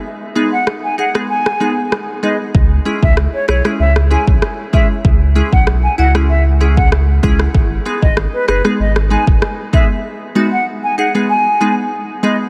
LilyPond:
<<
  \new Staff \with { instrumentName = "Flute" } { \time 4/4 \key cis \minor \tempo 4 = 96 r8. fis''16 r16 gis''16 fis''16 r16 gis''8. r8. dis''16 r16 | r8. e''16 r16 cis''16 cis''16 r16 e''16 r16 gis''16 r8. e''16 r16 | r8. fis''16 r16 gis''16 fis''16 r16 e''16 r8 fis''16 r4 | r8. dis''16 r16 b'16 b'16 r16 dis''16 r16 gis''16 r8. e''16 r16 |
r8. fis''16 r16 gis''16 fis''16 r16 gis''8. r8. dis''16 r16 | }
  \new Staff \with { instrumentName = "Synth pluck" } { \time 4/4 \key cis \minor r8 <gis b dis' gis'>16 r8. <dis' gis'>16 <gis b dis' gis'>16 r8 <gis b dis' gis'>16 r8. <gis b dis' gis'>16 r16 | r8 <gis cis' e' gis'>16 r8. <e' gis'>16 <gis cis' e' gis'>16 r8 <gis cis' e' gis'>16 r8. <gis cis' e' gis'>16 r16 | r8 <gis cis' e' gis'>16 r8. <e' fis'>16 <gis cis' e' gis'>16 r8 <gis cis' e' gis'>16 r8. <gis cis' e' gis'>16 r16 | r8 <gis b dis' gis'>16 r8. <dis' gis'>16 <gis b dis' gis'>16 r8 <gis b dis' gis'>16 r8. <gis b dis' gis'>16 r16 |
r8 <gis b dis' fis'>16 r8. <dis' gis'>16 <gis b dis' gis'>16 r8 <gis b dis' gis'>16 r8. <gis b dis' gis'>16 r16 | }
  \new Staff \with { instrumentName = "Sub bass" } { \clef bass \time 4/4 \key cis \minor r1 | cis,8 r16 cis,8 r16 b,,16 r16 cis,8. b,,16 r4 | cis,8. b,,8. cis,2 cis,8 | gis,,8 r16 gis,,8 r16 fis,,16 r16 gis,,8. fis,,16 r4 |
r1 | }
  \new DrumStaff \with { instrumentName = "Drums" } \drummode { \time 4/4 r4 ss8. ss16 r16 ss8. ss4 | bd8. bd16 ss8 ss16 ss16 r16 ss8 bd16 ss8 bd8 | bd8. bd16 ss8. ss16 r8. bd16 ss8 bd16 ss16 | bd8. bd16 ss8 ss16 ss16 r16 ss8 bd16 ss8 bd8 |
r4 r4 r4 r4 | }
>>